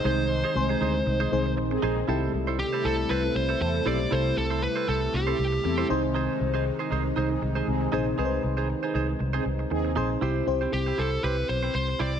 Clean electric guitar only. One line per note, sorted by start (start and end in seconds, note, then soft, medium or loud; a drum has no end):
0.04 0.28 D#4 medium
0.04 0.29 G#4 medium
0.04 0.29 C5 medium
0.30 muted clean electric guitar stroke soft
0.44 0.54 D#4 medium
0.44 0.55 G#4 medium
0.44 0.55 C5 medium
0.69 0.79 D#4 soft
0.69 0.80 G#4 medium
0.69 0.80 C5 medium
0.81 0.97 D#4 loud
0.81 0.95 G#4 medium
0.81 0.94 C5 medium
0.95 muted clean electric guitar stroke soft
1.06 muted clean electric guitar stroke soft
1.20 1.30 D#4 medium
1.20 1.31 G#4 medium
1.20 1.32 C5 medium
1.32 muted clean electric guitar stroke soft
1.46 muted clean electric guitar stroke soft
1.57 muted clean electric guitar stroke medium
1.71 muted clean electric guitar stroke medium
1.82 1.99 D#4 medium
1.82 1.96 G#4 medium
1.82 1.95 C5 medium
1.96 muted clean electric guitar stroke medium
2.08 2.32 E4 medium
2.08 2.32 A4 medium
2.08 2.32 C5 loud
2.33 muted clean electric guitar stroke soft
2.47 2.58 E4 medium
2.47 2.58 A4 medium
2.47 2.58 C5 medium
2.59 muted clean electric guitar stroke soft
2.73 2.83 E4 medium
2.73 2.84 A4 medium
2.73 2.84 C5 medium
2.84 3.01 E4 medium
2.84 2.98 A4 medium
2.84 2.97 C5 medium
2.98 muted clean electric guitar stroke soft
3.09 3.26 E4 medium
3.09 3.23 A4 medium
3.09 3.22 C5 loud
3.23 muted clean electric guitar stroke soft
3.35 muted clean electric guitar stroke soft
3.49 3.61 E4 medium
3.49 3.60 A4 medium
3.49 3.60 C5 medium
3.74 muted clean electric guitar stroke soft
3.86 4.02 E4 medium
3.86 4.00 A4 medium
3.86 3.98 C5 medium
4.00 muted clean electric guitar stroke soft
4.11 4.35 E4 medium
4.11 4.35 A4 medium
4.11 4.36 C5 loud
4.37 muted clean electric guitar stroke soft
4.50 4.61 E4 medium
4.50 4.61 A4 medium
4.50 4.62 C5 medium
4.76 4.86 E4 medium
4.76 4.87 A4 medium
4.76 4.87 C5 medium
4.87 5.04 E4 medium
4.87 5.01 A4 medium
4.87 5.00 C5 medium
5.02 muted clean electric guitar stroke soft
5.13 muted clean electric guitar stroke medium
5.27 5.37 E4 medium
5.27 5.38 A4 medium
5.27 5.38 C5 medium
5.52 muted clean electric guitar stroke soft
5.64 muted clean electric guitar stroke soft
5.78 5.89 E4 medium
5.78 5.90 A4 medium
5.78 5.90 C5 medium
5.89 6.03 D#4 medium
5.89 6.03 G#4 medium
5.89 6.02 C5 medium
6.14 6.38 D#4 medium
6.14 6.39 G#4 medium
6.14 6.39 C5 loud
6.40 muted clean electric guitar stroke soft
6.54 6.64 D#4 medium
6.54 6.65 G#4 medium
6.54 6.65 C5 medium
6.65 muted clean electric guitar stroke soft
6.79 6.90 D#4 soft
6.79 6.90 G#4 medium
6.79 6.90 C5 medium
6.91 7.07 D#4 medium
6.91 7.05 G#4 medium
6.91 7.04 C5 loud
7.05 muted clean electric guitar stroke soft
7.16 7.33 D#4 loud
7.16 7.30 G#4 medium
7.16 7.29 C5 loud
7.30 muted clean electric guitar stroke soft
7.41 muted clean electric guitar stroke medium
7.55 7.67 D#4 soft
7.55 7.67 G#4 medium
7.55 7.67 C5 medium
7.81 muted clean electric guitar stroke soft
7.92 8.09 D#4 medium
7.92 8.06 G#4 medium
7.92 8.05 C5 medium
8.06 muted clean electric guitar stroke soft
8.18 8.42 D#4 medium
8.18 8.42 G#4 medium
8.18 8.42 C5 medium
8.43 muted clean electric guitar stroke soft
8.57 8.68 D#4 medium
8.57 8.68 G#4 medium
8.57 8.68 C5 medium
8.69 muted clean electric guitar stroke soft
8.83 8.93 D#4 medium
8.83 8.94 G#4 medium
8.83 8.94 C5 medium
8.94 9.11 D#4 medium
8.94 9.08 G#4 medium
8.94 9.07 C5 loud
9.08 muted clean electric guitar stroke soft
9.19 muted clean electric guitar stroke soft
9.33 9.44 D#4 medium
9.33 9.44 G#4 medium
9.33 9.45 C5 medium
9.45 muted clean electric guitar stroke medium
9.59 muted clean electric guitar stroke soft
9.70 muted clean electric guitar stroke soft
9.85 muted clean electric guitar stroke soft
9.96 10.13 D#4 medium
9.96 10.10 G#4 medium
9.96 10.09 C5 medium
10.10 muted clean electric guitar stroke soft
10.21 10.45 E4 medium
10.21 10.46 G4 medium
10.21 10.46 C5 loud
10.47 muted clean electric guitar stroke soft
10.61 10.71 E4 medium
10.61 10.72 G4 medium
10.61 10.72 C5 medium
10.86 10.96 E4 medium
10.86 10.97 G4 medium
10.86 10.97 C5 medium
10.98 11.14 E4 medium
10.98 11.12 G4 medium
10.98 11.11 C5 medium
11.12 muted clean electric guitar stroke soft
11.23 11.40 E4 medium
11.23 11.37 G4 medium
11.23 11.36 C5 medium
11.37 muted clean electric guitar stroke soft
11.49 muted clean electric guitar stroke soft
11.63 11.74 E4 medium
11.63 11.74 G4 medium
11.63 11.74 C5 medium
11.88 muted clean electric guitar stroke soft
11.99 12.16 E4 medium
11.99 12.14 G4 medium
11.99 12.12 C5 medium
12.14 muted clean electric guitar stroke soft